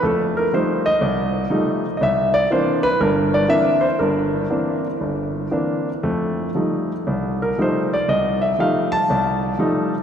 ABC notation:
X:1
M:4/4
L:1/8
Q:"Swing" 1/4=119
K:F
V:1 name="Grand piano"
A B c _e3 z2 | [_e=e] d c =B _B d e c | B3 z4 z | z4 z B c d |
_e =e f a2 z3 |]
V:2 name="Grand piano" clef=bass
[F,,A,]2 [F,G,A,_E] z C,,2 [F,G,A,E] z | C,,2 [E,B,CD] z [G,,,G,,]2 [E,B,CD] z | [G,,,G,,]2 [E,B,CD] z G,,,2 [E,B,CD] z | [F,,A,]2 [F,G,A,_E] z C,,2 [F,G,A,E] z |
C,,2 [F,G,A,_E] z C,,2 [F,G,A,E] z |]